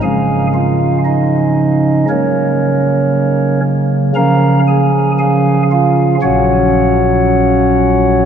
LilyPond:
<<
  \new Staff \with { instrumentName = "Pipe organ" } { \time 4/4 \key des \major \tempo 4 = 58 <aes' f'' aes''>8 <f' f''>8 <ees' ees''>4 <des' bes' des''>4. r8 | <bes' f'' bes''>8 <aes' aes''>8 <aes' f'' aes''>8 <f' f''>8 <bes,, ges' des'' ges''>2 | }
  \new Staff \with { instrumentName = "Pipe organ" } { \clef bass \time 4/4 \key des \major <des f aes des'>2 <des ges bes>2 | <des f des'>2 <bes, ges des'>2 | }
>>